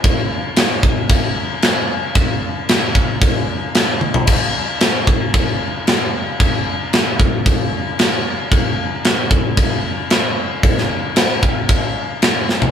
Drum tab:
CC |x---x---x---x---|x---x---x---x---|x---x---x---x---|x---x---x---x---|
SD |----o-------o---|----o-------o---|----o-------o---|----o-------o---|
T1 |----------------|--------------o-|----------------|----------------|
FT |----------------|---------------o|----------------|----------------|
BD |o-----o-o-------|o-----o-o-------|o-----o-o-------|o-----o-o-------|

CC |x---x---x---x---|x---x---x---x---|
SD |----o-------o---|-o--o-------o-o-|
T1 |----------------|----------------|
FT |----------------|---------------o|
BD |o-----o-o-------|o-----o-o-------|